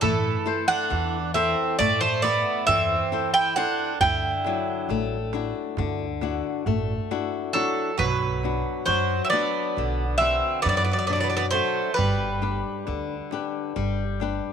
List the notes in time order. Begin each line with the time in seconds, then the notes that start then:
0.01 A2 E3 A3 A4, darbuka dum
0.24 darbuka tek
0.46 E4 A4 C5, darbuka tek
0.68 D4 F#5
0.90 E2 E3, darbuka tek
1.34 C4 E4 A4 C5 E5, darbuka tek
1.79 A2 A3 D5, darbuka tek, darbuka dum
2.01 A3 C5, darbuka tek
2.22 B3 E4 A4 D5 E5, darbuka tek
2.67 E2 E3 C4 E5, darbuka dum
3.12 E4 A4 C5
3.34 E4 G5
3.56 D4 E4 A4 C5 F#5, darbuka tek
3.79 darbuka tek
4.01 D2 D3 E4 G5, darbuka dum
4.22 darbuka tek
4.45 F#3 D4 E4, darbuka tek
4.68 darbuka tek
4.89 A1 A3, darbuka tek
5.33 D4 E4 F#4, darbuka tek
5.55 darbuka tek
5.77 D2 D3, darbuka tek, darbuka dum
5.99 darbuka tek
6.21 D4 E4 F#4, darbuka tek
6.44 darbuka tek
6.66 A1 A3, darbuka dum
7.11 D4 E4 F#4, darbuka tek
7.34 darbuka tek
7.53 F#3 D4 E4 F#4 A4, darbuka tek
7.98 B1 B2 F#3 B4, darbuka dum
8.43 D4 F#4, darbuka tek
8.86 F#2 F#3 C5, darbuka tek
9.25 C4 E5
9.30 B3 D4 F#4 D5, darbuka tek
9.77 B1 D3, darbuka tek
10.18 C4 D4 B4 E5, darbuka tek
10.22 F#4
10.62 F#2 B3 D5, darbuka dum
10.66 F#3 B3 D5
10.77 B3 D5
10.84 B3 D5
10.92 B3 D5
10.99 B3 D5
11.07 B2 B3 D4 F#4 D5, darbuka tek
11.13 B3 D5
11.20 B3 D5
11.30 B3 D5
11.37 B3 D5
11.51 F#3 A3 D4 F#4 C5
11.55 darbuka tek
11.94 G3 B4
11.98 G1 G3, darbuka dum
12.42 D4 G4 B4, darbuka tek
12.87 D2 D3, darbuka tek
13.31 D4 G4 B4, darbuka tek
13.76 G1 G3, darbuka tek
14.20 D4 G4 B4, darbuka tek